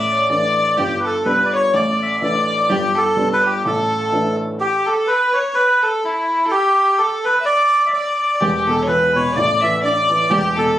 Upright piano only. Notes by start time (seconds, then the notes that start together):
Already playing: A1 A2
0.30 E3 A3 D4
0.77 G1 G2
1.26 G3 B3 D4
1.74 A1 A2
2.21 E3 A3 D4
2.69 G1 G2
3.17 G3 B3 D4
3.65 A1 A2
4.12 E3 A3 D4
8.41 E1 E2
8.67 B2
8.88 E3
9.15 B2
9.36 A1 A2
9.63 E3
9.84 D4
10.10 E3
10.30 E1 E2
10.57 B2